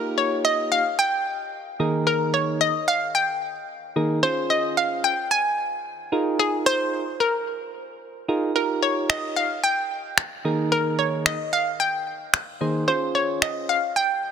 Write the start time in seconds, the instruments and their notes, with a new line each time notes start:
Already playing: synth keys A#3 D#4 F4 G4, synth pluck A#4
0.18 synth pluck C#5
0.45 synth pluck D#5
0.72 synth pluck F5
0.99 synth pluck G5
1.80 synth keys D#3 A#3 D#4 G#4 A#4
2.07 synth pluck A#4
2.34 synth pluck C#5
2.61 synth pluck D#5
2.88 synth pluck F5
3.15 synth pluck G5
3.96 synth keys D#3 A#3 D#4 G#4 A#4
4.23 synth keys C#4 F4 G#4 C5, synth pluck C5
4.50 synth pluck D#5
4.77 synth pluck F5
5.04 synth pluck G5
5.31 synth pluck G#5
6.12 synth keys D#4 F4 G#4 A#4
6.39 synth pluck G#4
6.66 synth pluck C5
7.20 synth pluck A#4
8.28 synth keys D#4 F4 G#4 A#4
8.55 synth keys D#4 F4 G4 A#4, synth pluck A#4
8.83 synth pluck C#5
9.10 synth pluck D#5, finger snap
9.36 synth pluck F5
9.64 synth pluck G5
10.18 finger snap
10.45 synth keys D#3 A#3 D#4 G#4 A#4
10.72 synth pluck A#4
10.99 synth pluck C#5
11.26 synth pluck D#5, finger snap
11.53 synth pluck F5
11.80 synth pluck G5
12.34 finger snap
12.61 synth keys D#3 A#3 D#4 G#4 C5
12.88 synth keys C#4 F4 G#4 C5, synth pluck C5
13.15 synth pluck C#5
13.42 synth pluck D#5, finger snap
13.69 synth pluck F5
13.96 synth pluck G5